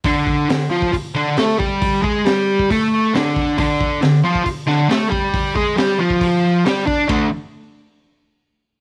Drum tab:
RD |----------------|----------------|----------------|----------------|
HH |o---o---o---o---|o---o---o---o---|o---o---o---o---|o---o---o---o---|
SD |----o-------o---|----o-------o---|----o-----o-o---|----o-------o---|
BD |o-o----oo-----o-|o-o----oo-----o-|o-o----oo-----o-|o-o----oo-----o-|

RD |b---------------|
HH |----------------|
SD |----------------|
BD |o---------------|